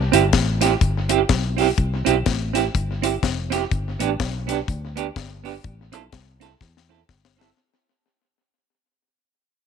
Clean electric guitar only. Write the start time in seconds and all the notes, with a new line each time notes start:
0.12 C4 E4 G4
0.61 C4 E4 G4
1.09 C4 E4 G4
1.57 C4 E4 G4
2.05 C4 E4 G4
2.53 C4 E4 G4
3.02 C4 E4 G4
3.50 C4 E4 G4
3.99 B3 D4 G4
4.47 B3 D4 G4
4.96 B3 D4 G4
5.44 B3 D4 G4
5.92 C4 E4 A4
6.40 C4 E4 A4
6.89 C4 E4 A4
7.37 C4 E4 A4